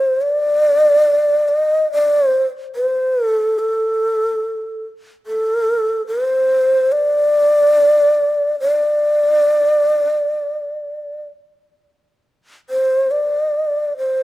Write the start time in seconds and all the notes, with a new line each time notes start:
Already playing: C5
0.22 D5
1.48 D#5
1.92 D5
2.26 C5
2.76 C5
3.28 A4
3.59 A4
5.26 A4
6.07 C5
6.92 D5
8.60 D5
12.70 C5
13.11 D5
13.97 C5